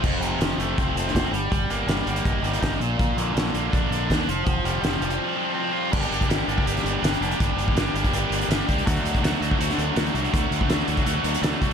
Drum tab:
CC |x---------------|----------------|----------------|----------------|
HH |--x-x-x-x-x-x-x-|x-x-x-xxx-xxx-x-|x-x-x-x-x-x-x-x-|x-x-x-xx--------|
SD |----o------oo---|----o-------o---|----o-------o---|----o-----------|
BD |o-------o---o---|o-------o---o---|o-------o---o---|o---------------|

CC |x---------------|----------------|----------------|----------------|
HH |-xxxx-x-xxx-xxxx|x-x-x-xxx-xxx-xx|x-xxx-x-xxx-xxxx|x-x-x-xxx-xxx-x-|
SD |----o----o--o---|----o-------o---|----o----o--o---|----o-------o---|
BD |o--o---o--------|o--o---o------o-|o--o---o--------|o--o---o------o-|